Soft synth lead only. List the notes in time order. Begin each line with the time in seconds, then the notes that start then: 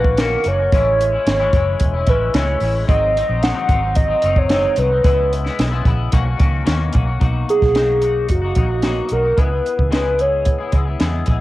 Already playing: B4
0.19 A#4
0.48 C#5
2.09 B4
2.35 C#5
2.89 D#5
3.43 F#5
3.96 D#5
4.38 C#5
4.79 B4
7.50 G#4
8.31 F#4
9.12 A#4
9.39 B4
9.94 B4
10.21 C#5